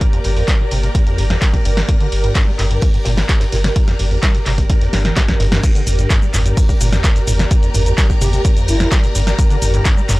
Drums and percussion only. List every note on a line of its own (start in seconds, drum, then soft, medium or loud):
0.01 kick loud
0.01 closed hi-hat medium
0.01 ride medium
0.13 closed hi-hat soft
0.24 open hi-hat loud
0.24 ride medium
0.37 open hi-hat medium
0.47 kick loud
0.47 snare loud
0.47 clap loud
0.47 closed hi-hat medium
0.47 ride medium
0.71 open hi-hat loud
0.71 ride medium
0.83 snare soft
0.83 closed hi-hat medium
0.95 kick loud
0.95 closed hi-hat medium
0.95 ride medium
1.07 closed hi-hat soft
1.18 open hi-hat loud
1.18 ride medium
1.30 snare medium
1.30 closed hi-hat soft
1.42 kick loud
1.42 snare loud
1.42 clap loud
1.42 closed hi-hat medium
1.42 ride medium
1.54 kick medium
1.54 closed hi-hat soft
1.65 open hi-hat loud
1.65 ride medium
1.77 snare medium
1.77 snare soft
1.77 closed hi-hat medium
1.89 kick loud
1.89 closed hi-hat medium
1.89 ride medium
2.01 closed hi-hat soft
2.12 open hi-hat loud
2.12 ride medium
2.24 closed hi-hat medium
2.35 kick loud
2.35 snare loud
2.35 clap loud
2.35 closed hi-hat medium
2.35 ride loud
2.59 clap medium
2.59 open hi-hat loud
2.59 ride medium
2.71 closed hi-hat medium
2.81 kick loud
2.81 closed hi-hat medium
2.81 open hi-hat medium
2.94 closed hi-hat soft
3.05 snare loud
3.05 open hi-hat loud
3.05 ride medium
3.17 snare loud
3.17 snare medium
3.17 closed hi-hat medium
3.17 ride medium
3.29 kick loud
3.29 snare loud
3.29 clap loud
3.29 closed hi-hat medium
3.29 ride medium
3.40 snare loud
3.40 closed hi-hat soft
3.40 ride medium
3.52 snare loud
3.52 open hi-hat loud
3.52 ride medium
3.64 snare medium
3.64 snare loud
3.64 closed hi-hat medium
3.64 ride medium
3.76 kick loud
3.76 closed hi-hat medium
3.76 ride loud
3.88 snare soft
3.88 closed hi-hat soft
3.99 open hi-hat loud
3.99 ride medium
4.11 open hi-hat medium
4.23 kick loud
4.23 snare loud
4.23 clap loud
4.23 closed hi-hat medium
4.23 ride medium
4.35 closed hi-hat soft
4.46 clap medium
4.46 open hi-hat loud
4.46 ride medium
4.58 kick medium
4.58 snare soft
4.58 closed hi-hat medium
4.70 kick loud
4.70 closed hi-hat medium
4.70 ride medium
4.81 snare soft
4.81 closed hi-hat soft
4.93 snare medium
4.93 open hi-hat loud
4.93 ride medium
5.05 snare medium
5.05 closed hi-hat medium
5.17 kick loud
5.17 snare medium
5.17 snare loud
5.17 clap loud
5.17 closed hi-hat medium
5.17 ride medium
5.28 kick medium
5.28 snare medium
5.28 closed hi-hat soft
5.40 snare loud
5.40 open hi-hat loud
5.40 ride medium
5.52 snare medium
5.52 snare loud
5.52 closed hi-hat medium
5.52 ride medium
5.63 kick loud
5.63 closed hi-hat medium
5.63 ride medium
5.63 crash loud
5.63 cabasa soft
5.75 closed hi-hat soft
5.75 cabasa soft
5.87 mid tom medium
5.87 open hi-hat loud
5.87 ride medium
5.87 cabasa medium
5.99 closed hi-hat medium
5.99 cabasa soft
6.10 kick loud
6.10 snare loud
6.10 clap loud
6.10 closed hi-hat medium
6.10 ride medium
6.10 cabasa soft
6.22 cabasa soft
6.34 clap medium
6.34 mid tom medium
6.34 open hi-hat loud
6.34 ride medium
6.34 cabasa medium
6.46 closed hi-hat medium
6.46 cabasa soft
6.57 kick loud
6.57 closed hi-hat medium
6.57 open hi-hat medium
6.57 cabasa soft
6.69 kick medium
6.69 closed hi-hat soft
6.69 cabasa soft
6.81 open hi-hat loud
6.81 ride medium
6.81 cabasa medium
6.92 snare soft
6.92 snare medium
6.92 closed hi-hat medium
6.92 mid tom medium
6.92 cabasa soft
7.04 kick loud
7.04 snare loud
7.04 clap loud
7.04 closed hi-hat medium
7.04 ride medium
7.04 cabasa soft
7.15 snare soft
7.15 closed hi-hat soft
7.15 cabasa soft
7.27 mid tom medium
7.27 open hi-hat loud
7.27 ride medium
7.27 cabasa medium
7.39 snare medium
7.39 closed hi-hat medium
7.39 cabasa soft
7.51 kick loud
7.51 closed hi-hat medium
7.51 ride medium
7.51 cabasa soft
7.63 closed hi-hat soft
7.63 cabasa soft
7.74 mid tom medium
7.74 open hi-hat loud
7.74 ride medium
7.74 cabasa medium
7.86 closed hi-hat medium
7.86 cabasa soft
7.98 kick loud
7.98 snare loud
7.98 clap loud
7.98 closed hi-hat medium
7.98 ride medium
7.98 cabasa soft
8.10 kick medium
8.10 cabasa soft
8.21 mid tom loud
8.21 open hi-hat loud
8.21 ride medium
8.21 cabasa medium
8.33 snare soft
8.33 closed hi-hat medium
8.33 cabasa soft
8.45 kick loud
8.45 closed hi-hat medium
8.45 ride medium
8.45 cabasa soft
8.57 closed hi-hat soft
8.57 cabasa soft
8.68 open hi-hat loud
8.68 ride medium
8.68 cabasa medium
8.80 snare medium
8.80 closed hi-hat medium
8.80 cabasa soft
8.92 kick loud
8.92 snare loud
8.92 clap loud
8.92 closed hi-hat medium
8.92 ride medium
8.92 cabasa soft
9.04 closed hi-hat soft
9.04 cabasa soft
9.15 open hi-hat loud
9.15 ride medium
9.15 cabasa medium
9.27 snare medium
9.27 snare soft
9.27 closed hi-hat medium
9.27 cabasa soft
9.39 kick loud
9.39 closed hi-hat medium
9.39 ride medium
9.39 cabasa soft
9.50 closed hi-hat soft
9.50 cabasa soft
9.62 mid tom medium
9.62 open hi-hat loud
9.62 ride medium
9.62 cabasa medium
9.74 closed hi-hat medium
9.74 cabasa soft
9.85 kick loud
9.85 snare loud
9.85 clap loud
9.85 closed hi-hat medium
9.85 ride medium
9.85 cabasa soft
9.97 cabasa soft
10.09 clap medium
10.09 mid tom loud
10.09 open hi-hat loud
10.09 ride medium
10.09 cabasa medium